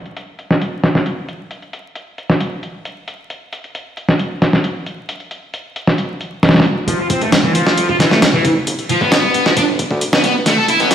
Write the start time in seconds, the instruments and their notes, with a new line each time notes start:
0.06 closed hi-hat
0.17 closed hi-hat
0.39 closed hi-hat
0.51 snare
0.61 closed hi-hat
0.84 snare, closed hi-hat
0.95 snare
1.06 closed hi-hat
1.29 closed hi-hat
1.51 closed hi-hat
1.62 closed hi-hat
1.73 closed hi-hat
1.95 closed hi-hat
2.18 closed hi-hat
2.30 snare
2.40 closed hi-hat
2.63 closed hi-hat
2.85 closed hi-hat
3.08 closed hi-hat
3.30 closed hi-hat
3.53 closed hi-hat
3.64 closed hi-hat
3.75 closed hi-hat
3.97 closed hi-hat
4.09 snare
4.19 closed hi-hat
4.42 snare, closed hi-hat
4.53 snare
4.64 closed hi-hat
4.86 closed hi-hat
5.09 closed hi-hat
5.20 closed hi-hat
5.31 closed hi-hat
5.54 closed hi-hat
5.76 closed hi-hat
5.87 snare
5.98 closed hi-hat
6.21 closed hi-hat
6.43 snare, closed hi-hat
6.49 snare, closed hi-hat
6.54 snare, closed hi-hat
6.60 snare, closed hi-hat
6.65 closed hi-hat
6.88 analog synth bass F1, distorted electric guitar F3, kick, closed hi-hat
6.99 distorted electric guitar F4
7.10 distorted electric guitar C4, kick, closed hi-hat
7.21 analog synth bass F1, distorted electric guitar A3, closed hi-hat
7.32 snare, closed hi-hat
7.44 analog synth bass F1, distorted electric guitar E3
7.55 distorted electric guitar F3, closed hi-hat
7.67 snare
7.77 analog synth bass F1, closed hi-hat
7.89 distorted electric guitar F4, kick
8.00 distorted electric guitar E3, snare, closed hi-hat
8.11 analog synth bass C2, distorted electric guitar A3, snare
8.22 snare, closed hi-hat
8.34 analog synth bass F1, distorted electric guitar E3
8.45 kick, closed hi-hat
8.67 analog synth bass G1, closed hi-hat
8.79 closed hi-hat
8.89 distorted electric guitar F3, closed hi-hat
9.01 analog synth bass G1, distorted electric guitar B3, kick
9.12 distorted electric guitar B3, snare, closed hi-hat
9.24 analog synth bass G1
9.34 closed hi-hat
9.46 distorted electric guitar F3, snare
9.57 analog synth bass G1, distorted electric guitar D4, kick, closed hi-hat
9.79 kick, closed hi-hat
9.90 analog synth bass D2, kick
10.01 closed hi-hat
10.13 analog synth bass G1, distorted electric guitar B3, snare
10.24 distorted electric guitar B3, closed hi-hat
10.46 analog synth bass A1, distorted electric guitar A3, snare, closed hi-hat
10.58 distorted electric guitar A4
10.68 distorted electric guitar E4, closed hi-hat
10.80 analog synth bass A1, distorted electric guitar B3, closed hi-hat
10.91 snare, closed hi-hat